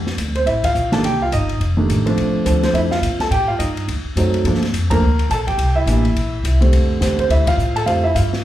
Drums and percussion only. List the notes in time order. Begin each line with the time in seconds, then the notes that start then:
0.07 snare
0.18 hi-hat pedal, ride
0.35 ride
0.47 ride
0.64 kick, ride
0.75 hi-hat pedal
0.92 snare, ride
1.04 ride
1.32 hi-hat pedal, ride
1.49 ride
1.61 ride
1.90 hi-hat pedal, ride
2.07 ride
2.18 ride
2.46 hi-hat pedal, ride
2.63 snare, ride
2.75 ride
2.91 snare
3.03 hi-hat pedal, ride
3.20 snare, ride
3.32 ride
3.60 hi-hat pedal, ride
3.77 ride
3.88 ride
4.17 hi-hat pedal, ride
4.34 ride
4.45 ride
4.55 snare
4.62 snare, ride
4.74 hi-hat pedal, ride
4.91 kick, ride
5.19 ride
5.31 hi-hat pedal, ride
5.47 kick, ride
5.59 ride
5.87 hi-hat pedal, ride
6.05 ride
6.16 ride
6.45 hi-hat pedal, ride
6.62 ride
6.73 ride
7.02 snare, hi-hat pedal, ride
7.18 kick, ride
7.30 ride
7.47 kick, ride
7.59 hi-hat pedal
7.76 ride
7.87 ride
8.16 hi-hat pedal, ride
8.33 snare